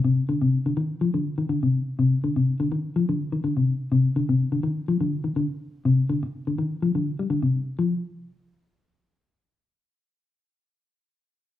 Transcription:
\new Staff \with { instrumentName = "Clean electric guitar" } { \clef bass \time 4/4 \key c \dorian \tempo 4 = 124 c8 d16 c8 d16 ees8 f16 d8 ees16 d16 c8 r16 | c8 d16 c8 d16 ees8 f16 d8 ees16 d16 c8 r16 | c8 d16 c8 d16 ees8 f16 d8 ees16 d16 r8. | c8 d16 r8 d16 ees8 f16 d8 g16 d16 c8 r16 |
f8 r2. r8 | r1 | }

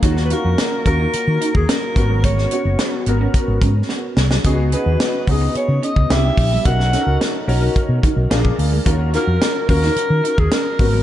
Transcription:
<<
  \new Staff \with { instrumentName = "Alto saxophone" } { \time 4/4 \key ees \minor \tempo 4 = 109 r16. ces''32 bes'4 bes'4~ bes'16 aes'16 bes'4 | des''4. r2 r8 | r8 ces''4 ees''8 des''8 ees''8 e''4 | fis''4 r2. |
r8 bes'4 bes'4~ bes'16 aes'16 bes'4 | }
  \new Staff \with { instrumentName = "Grand piano" } { \time 4/4 \key ees \minor <bes des' f' ges'>8 <bes des' f' ges'>4 <bes des' f' ges'>2 <ces' des' ges' bes'>8~ | <ces' des' ges' bes'>8 <ces' des' ges' des''>4 <ces' des' ges' bes'>2 r8 | <ces' ees' ges' aes'>8 <ces' ees' ges' aes'>4 <ces' ees' ges' aes'>4. <b d' e' g'>4 | <des' dis' fis' ais'>8 <des' dis' fis' a' ais'>4 <des' dis' fis' ais'>4. <d' f' aes' bes'>4 |
<des' f' ges' bes'>8 <des' f' ges' bes'>4 <des' f' ges' bes'>2 <ces' des' ges' bes'>8 | }
  \new Staff \with { instrumentName = "Clean electric guitar" } { \time 4/4 \key ees \minor ees'16 r16 ees'16 r8. des'16 ees'16 r8 ees'16 r16 des'16 r8 ges16 | aes16 r16 des'16 r8. ces'16 des'16 r8 des'16 r16 ces'16 r8 ges16 | des'16 r16 des'16 r8. ces'16 des'16 r8 des'16 r16 c'16 r8 g16 | b16 r16 des'16 r8. b16 dis'16 r8 dis'16 r16 d'16 r8 aes16 |
ees'16 r16 ees'16 r8. des'16 ees'16 r8 ees'16 r16 des'16 r8 ges16 | }
  \new Staff \with { instrumentName = "Fretless electric bass" } { \clef bass \time 4/4 \key ees \minor ees,8. f,16 r8 ees,8 r16 ees16 r16 ees,16 r8 aes,,8~ | aes,,8. ges,,16 r8 aes,,8 r16 aes,,16 aes,8 r8 c,8 | des,8. ees,16 r8 des,8 r16 des16 r16 des,16 c,8 bes,,8 | b,,8. des,16 r8 b,,8 r16 b,16 r16 b,,16 bes,,8 d,8 |
ees,8. f,16 r8 ees,8 r16 ees16 r16 ees,16 r8 aes,,8 | }
  \new DrumStaff \with { instrumentName = "Drums" } \drummode { \time 4/4 <hh bd>16 sn16 hh8 <hh sn>8 <hh bd>8 hh8 hh16 bd16 <hh sn>8 <hh bd>8 | <hh bd>16 sn16 hh8 <hh sn>8 hh8 <hh bd>8 <hh bd>8 sn8 sn16 sn16 | <hh bd>8 hh8 <hh sn>8 <hho bd>8 hh8 hh16 bd16 <hh sn>8 <hho bd>8 | <hh bd>16 sn16 <hh sn>8 <hh sn>8 hho8 <hh bd>8 <hh bd>8 <hh sn>16 bd16 hho8 |
<hh bd>8 <hh sn>8 <hh sn>8 <hho bd>16 sn16 hh8 hh16 bd16 <hh sn>8 <hho bd>8 | }
>>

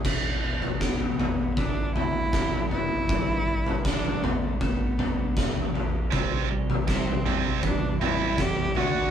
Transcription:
<<
  \new Staff \with { instrumentName = "Cello" } { \time 4/4 \key e \minor \tempo 4 = 79 r4 b4 d'8 e'4 e'8~ | e'4 d'8 b16 a16 b4. r8 | r4 c'4 d'8 e'8 g'8 fis'8 | }
  \new Staff \with { instrumentName = "Clean electric guitar" } { \time 4/4 \key e \minor e8 b8 g'8 b8 e8 b8 g'8 d'8 | g8 d'8 b'8 d'8 a8 d'8 b'8 g'8 | c8 g8 e'8 g8 e8 g8 e'8 d8 | }
  \new Staff \with { instrumentName = "Distorted electric guitar" } { \clef bass \time 4/4 \key e \minor r1 | r1 | <c g c'>8 <c g>8 <c g>8 <c g c'>8 <c g>8 <c g c'>8 <c g>8 <d a d'>8 | }
  \new Staff \with { instrumentName = "Fingered electric bass" } { \clef bass \time 4/4 \key e \minor e,,8 e,,8 e,,8 e,,8 g,,8 d,8 e,,8 fis,,8 | g,,8 g,,8 g,,8 d,8 g,,8 c,8 e,,8 e,8 | c,8 c,8 c,8 c,8 e,8 a,,8 e,8 d,8 | }
  \new DrumStaff \with { instrumentName = "Drums" } \drummode { \time 4/4 <cymc bd tomfh>8. tomfh16 <bd sn>16 tomfh16 <tomfh toml>8 <bd tomfh>8 <tomfh toml>8 <bd sn toml>16 tomfh16 tomfh8 | <bd tomfh>8. tomfh16 <bd sn>16 tomfh16 <tomfh toml>8 <bd tomfh>8 <tomfh toml>8 <bd sn toml>16 tomfh16 tomfh8 | <bd tomfh>8. tomfh16 <bd sn>16 tomfh16 <tomfh toml>8 <bd tomfh>8 <tomfh toml>8 <bd sn toml>16 tomfh16 tomfh8 | }
>>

